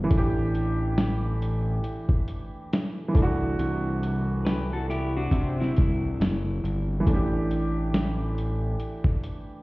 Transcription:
0.04 E3
0.08 A1 A3, kick, closed hi-hat
0.13 D4
0.17 G4
0.55 closed hi-hat
0.98 snare, closed hi-hat
1.42 closed hi-hat
1.84 closed hi-hat
2.09 kick
2.28 closed hi-hat
2.73 snare, closed hi-hat
3.08 E3
3.13 C2 A3, kick
3.17 D4, closed hi-hat
3.22 F#4
3.59 C2, closed hi-hat
4.03 closed hi-hat
4.45 G4 B4, snare, closed hi-hat
4.73 F#4 A4
4.90 E4 G4, closed hi-hat
5.17 D4 F#4
5.31 C3, kick, closed hi-hat
5.60 C4 E4, snare
5.76 C2, kick, closed hi-hat
6.20 F#1, snare, closed hi-hat
6.64 G1, closed hi-hat
7.00 E3
7.05 A1 A3, kick, closed hi-hat
7.10 D4
7.14 G4
7.51 closed hi-hat
7.94 snare, closed hi-hat
8.38 closed hi-hat
8.80 closed hi-hat
9.04 kick
9.24 closed hi-hat

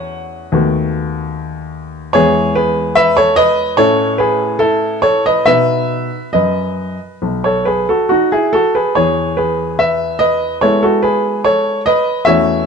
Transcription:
Already playing: E2 A3 C#4 F#4 C#5 F#5
0.52 D#2 A3 B3 F#4
2.13 E2 G#3 B3 E4 G#4 C#5
2.55 G#4 B4
2.95 B4 E5
3.17 A4 C#5
3.36 B4 D#5
3.77 A2 A3 C#4 E4 A4 C#5
4.18 G#4 B4
4.59 E4 A4
5.02 A4 C#5
5.26 B4 D#5
5.46 B2 B3 D#4 B4 E5
6.33 F#2 B4 D#5
7.22 B1
7.44 A4 C#5
7.65 G#4 B4
7.89 F#4 A4
8.09 D#4 F#4
8.32 E4 G#4
8.53 F#4 A4
8.75 G#4 B4
8.95 E2 G#4 C#5
9.37 G#4 B4
9.79 B4 E5
10.19 B4 D#5
10.61 G#3 B3 E4 A4 C#5
10.83 F#4 A4
11.03 G#4 B4
11.44 A4 C#5
11.86 B4 D#5
12.25 E2 A3 C#4 F#4 C#5 E5

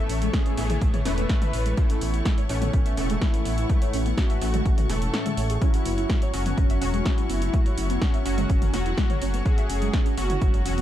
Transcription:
Already playing: A2 E3 A3 A4 C#5 E5 C#6
0.10 A1 C#4, open hi-hat
0.22 G#3, closed hi-hat
0.33 C#4 G#4, kick, snare, closed hi-hat
0.46 C#4, closed hi-hat
0.57 A1 A2 E3 A3 B3, open hi-hat
0.70 E4, closed hi-hat, mid tom
0.81 A1 G#3, kick, closed hi-hat
0.94 C#5, closed hi-hat, mid tom
1.05 E1 A2 E3 A3 C#4 B4, snare, open hi-hat
1.18 B3, closed hi-hat
1.29 C#4, kick, snare, closed hi-hat
1.42 E5, closed hi-hat, mid tom
1.53 A1 C#4, open hi-hat
1.66 G#3, closed hi-hat
1.77 A2 E3 A3 C#4 E4 F#5, kick, closed hi-hat
1.90 C#4, closed hi-hat
2.01 A1 B3, open hi-hat
2.14 E4, closed hi-hat
2.25 G#3, kick, snare, closed hi-hat
2.38 C#5, closed hi-hat
2.49 A1 A2 E3 A3 C#4, open hi-hat
2.62 B3, closed hi-hat, mid tom
2.73 A1 C#4, kick, closed hi-hat
2.86 E5, closed hi-hat
2.97 E1 A2 E3 A3 C#4, open hi-hat
3.10 G#3, closed hi-hat
3.21 C#4 E4, kick, snare, closed hi-hat
3.34 C#4, closed hi-hat
3.45 A1 B3, open hi-hat
3.58 E4, closed hi-hat
3.69 A2 E3 G#3 A3, kick, closed hi-hat
3.82 C#5, closed hi-hat
3.93 A1 C#4, open hi-hat
4.06 B3, closed hi-hat
4.17 C#4 F#4, kick, snare, closed hi-hat
4.30 E5, closed hi-hat
4.41 A1 A2 E3 A3 C#4, open hi-hat
4.54 G#3, closed hi-hat, mid tom
4.66 A1 C#4, kick, closed hi-hat
4.78 C#4, closed hi-hat, mid tom
4.89 E1 A2 E3 A3 C#4 A4, snare, open hi-hat
5.02 C#4, closed hi-hat
5.14 C#4, snare, closed hi-hat
5.26 G#3, closed hi-hat, mid tom
5.37 A1 C#5, open hi-hat
5.50 G#4, closed hi-hat
5.61 F#3 A3 C#4 E4 F#4 C#5 F#5, kick, closed hi-hat
5.74 C#4, closed hi-hat
5.85 F#1 B3, open hi-hat
5.98 E4, closed hi-hat
6.09 G#3, kick, snare, closed hi-hat
6.22 C#5, closed hi-hat
6.33 F#1 F#3 C#4 F#4, open hi-hat
6.46 B3, closed hi-hat, mid tom
6.57 F#1 C#4, kick, closed hi-hat
6.70 E5, closed hi-hat
6.81 E1 F#3 C#4 F#4, open hi-hat
6.94 G#3, closed hi-hat
7.05 C#4 E4, kick, snare, closed hi-hat
7.18 C#4, closed hi-hat
7.29 F#1 B3, open hi-hat
7.42 E4, closed hi-hat
7.53 F#3 G#3 C#4 F#4, kick, closed hi-hat
7.66 C#5, closed hi-hat
7.77 F#1 C#4, open hi-hat
7.90 B3, closed hi-hat
8.02 C#4, kick, snare, closed hi-hat
8.14 E5, closed hi-hat
8.25 F#1 F#3 C#4 F#4, open hi-hat
8.38 G#3, closed hi-hat, mid tom
8.49 F#1 C#4, kick, closed hi-hat
8.62 C#4, closed hi-hat, mid tom
8.73 E1 F#3 B3 C#4 F#4, snare, open hi-hat
8.86 E4, closed hi-hat
8.97 G#3, kick, snare, closed hi-hat
9.10 C#5, closed hi-hat, mid tom
9.21 F#1 C#4, open hi-hat
9.34 B3, closed hi-hat
9.46 F#3 C#4 F#4 G#4, kick, closed hi-hat
9.58 E5, closed hi-hat
9.69 F#1 C#4, open hi-hat
9.82 G#3, closed hi-hat
9.94 C#4, kick, snare, closed hi-hat
10.06 C#4, closed hi-hat
10.17 F#1 F#3 B3 C#4 F#4, open hi-hat
10.30 E4, closed hi-hat, mid tom
10.41 F#1 G#3, kick, closed hi-hat
10.54 C#5, closed hi-hat
10.65 E1 F#3 C#4 F#4, open hi-hat
10.78 B3, closed hi-hat

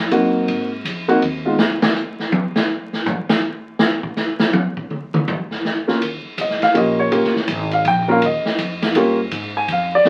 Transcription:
0.11 F#2 A#3 C4 D#4 F#4, kick, ride
0.48 G#2, kick, ride
0.85 F2, kick, hi-hat pedal, ride
1.08 A#3 C4 D#4 F#4, ride
1.22 D#2, kick, ride
1.45 G#3 B3 D#4 F4
1.59 C#2, snare
1.82 snare
1.96 hi-hat pedal
2.19 snare
2.32 high tom
2.56 snare
2.93 snare
3.06 floor tom, hi-hat pedal
3.29 snare
3.79 snare
4.03 kick
4.17 snare, hi-hat pedal
4.39 snare
4.53 high tom
4.77 kick
4.90 mid tom
5.14 mid tom
5.28 floor tom, hi-hat pedal
5.51 snare
5.65 snare
5.87 A#3 C#4 F4 A#4, snare
6.01 D#2, kick, ride
6.24 muted upright bass stroke
6.38 C2 D#5, kick, hi-hat pedal, ride
6.50 snare
6.62 F5, muted upright bass stroke, snare, ride
6.74 A#1 A#3 C#4 F4 G4 D#5, kick, ride
6.99 C#5
7.11 G1 A#3 C#4 F4 G4, kick, ride
7.24 snare
7.36 snare
7.48 G#1, kick, hi-hat pedal, ride
7.71 F5, ride
7.85 A#1 G5, kick, ride
8.08 A#3 C#4 F4 A#4 F5
8.21 D#2, kick, ride
8.26 D#5
8.45 muted upright bass stroke, snare
8.58 F2, kick, hi-hat pedal, ride
8.82 snare, ride
8.95 G2 A#3 C#4 F4 G4, kick, ride
9.31 G#2, kick, ride
9.57 G#5
9.68 F2, kick, ride
9.72 F5
9.95 D5
10.05 D#2 A#3, snare, hi-hat pedal

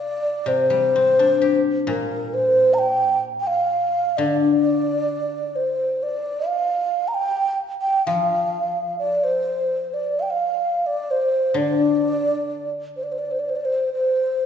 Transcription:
Already playing: C3 D5
0.46 C3 C5
0.70 G3
0.96 C4
1.19 D4
1.42 G4
1.87 A#2 A#4
2.34 C5
2.74 A#5
2.79 G5
3.40 G5
3.47 F5
4.17 D3 D5
5.56 C5
6.03 D5
6.47 F5
7.08 A#5
7.14 G5
7.82 G5
8.06 F3 F5
8.99 D5
9.24 C5
9.94 D5
10.20 F5 G5
10.30 F5
10.86 D5
11.11 C5
11.54 D3 D5
12.97 C5
13.03 D5
13.12 C5
13.19 D5
13.31 C5
13.39 D5
13.49 C5
13.56 D5
13.65 C5
13.93 C5

